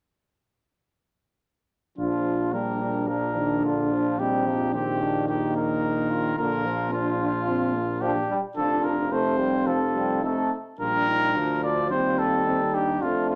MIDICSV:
0, 0, Header, 1, 6, 480
1, 0, Start_track
1, 0, Key_signature, -2, "major"
1, 0, Tempo, 555042
1, 1716, Time_signature, 4, 2, 24, 8
1, 3633, Tempo, 546448
1, 7953, Tempo, 557103
1, 11601, End_track
2, 0, Start_track
2, 0, Title_t, "Cornet"
2, 0, Program_c, 0, 56
2, 1716, Note_on_c, 0, 65, 39
2, 2188, Note_on_c, 0, 70, 33
2, 2201, Note_off_c, 0, 65, 0
2, 2663, Note_off_c, 0, 70, 0
2, 2669, Note_on_c, 0, 70, 32
2, 3149, Note_on_c, 0, 65, 36
2, 3162, Note_off_c, 0, 70, 0
2, 3622, Note_on_c, 0, 67, 36
2, 3635, Note_off_c, 0, 65, 0
2, 4102, Note_off_c, 0, 67, 0
2, 4107, Note_on_c, 0, 67, 39
2, 4576, Note_off_c, 0, 67, 0
2, 4582, Note_on_c, 0, 67, 36
2, 4824, Note_off_c, 0, 67, 0
2, 4832, Note_on_c, 0, 70, 42
2, 5535, Note_off_c, 0, 70, 0
2, 5553, Note_on_c, 0, 70, 47
2, 6022, Note_off_c, 0, 70, 0
2, 6030, Note_on_c, 0, 65, 50
2, 6980, Note_on_c, 0, 67, 42
2, 6994, Note_off_c, 0, 65, 0
2, 7297, Note_off_c, 0, 67, 0
2, 7466, Note_on_c, 0, 69, 53
2, 7706, Note_on_c, 0, 70, 43
2, 7720, Note_off_c, 0, 69, 0
2, 7953, Note_on_c, 0, 72, 47
2, 7966, Note_off_c, 0, 70, 0
2, 8426, Note_on_c, 0, 69, 41
2, 8439, Note_off_c, 0, 72, 0
2, 8908, Note_off_c, 0, 69, 0
2, 8921, Note_on_c, 0, 69, 35
2, 9155, Note_off_c, 0, 69, 0
2, 9406, Note_on_c, 0, 70, 65
2, 10093, Note_off_c, 0, 70, 0
2, 10120, Note_on_c, 0, 74, 51
2, 10347, Note_off_c, 0, 74, 0
2, 10352, Note_on_c, 0, 72, 51
2, 10594, Note_on_c, 0, 69, 54
2, 10607, Note_off_c, 0, 72, 0
2, 11075, Note_on_c, 0, 67, 47
2, 11088, Note_off_c, 0, 69, 0
2, 11313, Note_on_c, 0, 65, 54
2, 11326, Note_off_c, 0, 67, 0
2, 11545, Note_off_c, 0, 65, 0
2, 11550, Note_on_c, 0, 65, 46
2, 11601, Note_off_c, 0, 65, 0
2, 11601, End_track
3, 0, Start_track
3, 0, Title_t, "Flugelhorn"
3, 0, Program_c, 1, 56
3, 1710, Note_on_c, 1, 65, 31
3, 2160, Note_off_c, 1, 65, 0
3, 2190, Note_on_c, 1, 62, 32
3, 2429, Note_off_c, 1, 62, 0
3, 2433, Note_on_c, 1, 62, 39
3, 3607, Note_off_c, 1, 62, 0
3, 3629, Note_on_c, 1, 63, 38
3, 4115, Note_on_c, 1, 60, 38
3, 4128, Note_off_c, 1, 63, 0
3, 4355, Note_on_c, 1, 62, 43
3, 4368, Note_off_c, 1, 60, 0
3, 4586, Note_off_c, 1, 62, 0
3, 4591, Note_on_c, 1, 63, 39
3, 5061, Note_off_c, 1, 63, 0
3, 5066, Note_on_c, 1, 63, 42
3, 5306, Note_on_c, 1, 65, 55
3, 5319, Note_off_c, 1, 63, 0
3, 6836, Note_off_c, 1, 65, 0
3, 6985, Note_on_c, 1, 62, 43
3, 7293, Note_off_c, 1, 62, 0
3, 7464, Note_on_c, 1, 65, 44
3, 7917, Note_off_c, 1, 65, 0
3, 7944, Note_on_c, 1, 65, 46
3, 8911, Note_on_c, 1, 63, 36
3, 8924, Note_off_c, 1, 65, 0
3, 9155, Note_off_c, 1, 63, 0
3, 9402, Note_on_c, 1, 65, 35
3, 9851, Note_off_c, 1, 65, 0
3, 9874, Note_on_c, 1, 65, 37
3, 10839, Note_on_c, 1, 63, 36
3, 10852, Note_off_c, 1, 65, 0
3, 11309, Note_on_c, 1, 62, 39
3, 11322, Note_off_c, 1, 63, 0
3, 11601, Note_off_c, 1, 62, 0
3, 11601, End_track
4, 0, Start_track
4, 0, Title_t, "French horn"
4, 0, Program_c, 2, 60
4, 1714, Note_on_c, 2, 62, 35
4, 2187, Note_on_c, 2, 58, 28
4, 2200, Note_off_c, 2, 62, 0
4, 2665, Note_off_c, 2, 58, 0
4, 2670, Note_on_c, 2, 62, 33
4, 3624, Note_on_c, 2, 60, 37
4, 3637, Note_off_c, 2, 62, 0
4, 4104, Note_on_c, 2, 58, 37
4, 4117, Note_off_c, 2, 60, 0
4, 5534, Note_off_c, 2, 58, 0
4, 5540, Note_on_c, 2, 58, 40
4, 6022, Note_on_c, 2, 62, 38
4, 6035, Note_off_c, 2, 58, 0
4, 6258, Note_off_c, 2, 62, 0
4, 6263, Note_on_c, 2, 62, 44
4, 6372, Note_off_c, 2, 62, 0
4, 6501, Note_on_c, 2, 60, 46
4, 6738, Note_on_c, 2, 58, 41
4, 6751, Note_off_c, 2, 60, 0
4, 7222, Note_off_c, 2, 58, 0
4, 7458, Note_on_c, 2, 62, 44
4, 7944, Note_on_c, 2, 60, 43
4, 7957, Note_off_c, 2, 62, 0
4, 8893, Note_off_c, 2, 60, 0
4, 8899, Note_on_c, 2, 60, 36
4, 9144, Note_off_c, 2, 60, 0
4, 9391, Note_on_c, 2, 62, 38
4, 9635, Note_on_c, 2, 63, 42
4, 9648, Note_off_c, 2, 62, 0
4, 9875, Note_on_c, 2, 62, 33
4, 9888, Note_off_c, 2, 63, 0
4, 10361, Note_on_c, 2, 60, 37
4, 10374, Note_off_c, 2, 62, 0
4, 10832, Note_off_c, 2, 60, 0
4, 10837, Note_on_c, 2, 60, 42
4, 10945, Note_off_c, 2, 60, 0
4, 11076, Note_on_c, 2, 62, 40
4, 11317, Note_on_c, 2, 60, 41
4, 11330, Note_off_c, 2, 62, 0
4, 11601, Note_off_c, 2, 60, 0
4, 11601, End_track
5, 0, Start_track
5, 0, Title_t, "Trombone"
5, 0, Program_c, 3, 57
5, 1713, Note_on_c, 3, 53, 37
5, 2194, Note_on_c, 3, 55, 36
5, 2207, Note_off_c, 3, 53, 0
5, 2672, Note_on_c, 3, 53, 32
5, 2685, Note_off_c, 3, 55, 0
5, 2918, Note_on_c, 3, 51, 40
5, 2931, Note_off_c, 3, 53, 0
5, 3148, Note_on_c, 3, 50, 39
5, 3161, Note_off_c, 3, 51, 0
5, 3392, Note_on_c, 3, 53, 37
5, 3405, Note_off_c, 3, 50, 0
5, 3624, Note_off_c, 3, 53, 0
5, 3630, Note_on_c, 3, 55, 38
5, 3870, Note_on_c, 3, 53, 33
5, 3883, Note_off_c, 3, 55, 0
5, 4104, Note_off_c, 3, 53, 0
5, 4109, Note_on_c, 3, 51, 43
5, 5519, Note_off_c, 3, 51, 0
5, 5553, Note_on_c, 3, 50, 47
5, 5791, Note_on_c, 3, 53, 44
5, 5804, Note_off_c, 3, 50, 0
5, 6976, Note_off_c, 3, 53, 0
5, 6981, Note_on_c, 3, 53, 50
5, 7091, Note_off_c, 3, 53, 0
5, 7226, Note_on_c, 3, 55, 50
5, 7335, Note_off_c, 3, 55, 0
5, 7475, Note_on_c, 3, 53, 45
5, 7780, Note_off_c, 3, 53, 0
5, 7955, Note_on_c, 3, 57, 49
5, 8191, Note_on_c, 3, 55, 42
5, 8204, Note_off_c, 3, 57, 0
5, 8424, Note_off_c, 3, 55, 0
5, 8429, Note_on_c, 3, 53, 41
5, 8536, Note_off_c, 3, 53, 0
5, 8673, Note_on_c, 3, 55, 42
5, 8906, Note_off_c, 3, 55, 0
5, 8919, Note_on_c, 3, 57, 39
5, 9154, Note_off_c, 3, 57, 0
5, 9399, Note_on_c, 3, 55, 36
5, 9891, Note_on_c, 3, 53, 42
5, 9904, Note_off_c, 3, 55, 0
5, 10123, Note_off_c, 3, 53, 0
5, 10128, Note_on_c, 3, 53, 38
5, 10369, Note_on_c, 3, 55, 39
5, 10382, Note_off_c, 3, 53, 0
5, 11315, Note_off_c, 3, 55, 0
5, 11320, Note_on_c, 3, 57, 38
5, 11601, Note_off_c, 3, 57, 0
5, 11601, End_track
6, 0, Start_track
6, 0, Title_t, "Tuba"
6, 0, Program_c, 4, 58
6, 1712, Note_on_c, 4, 34, 41
6, 5514, Note_off_c, 4, 34, 0
6, 5545, Note_on_c, 4, 34, 47
6, 7190, Note_off_c, 4, 34, 0
6, 7470, Note_on_c, 4, 29, 52
6, 9120, Note_off_c, 4, 29, 0
6, 9399, Note_on_c, 4, 34, 37
6, 9885, Note_on_c, 4, 38, 38
6, 9898, Note_off_c, 4, 34, 0
6, 10364, Note_on_c, 4, 39, 41
6, 10377, Note_off_c, 4, 38, 0
6, 11308, Note_off_c, 4, 39, 0
6, 11313, Note_on_c, 4, 41, 41
6, 11601, Note_off_c, 4, 41, 0
6, 11601, End_track
0, 0, End_of_file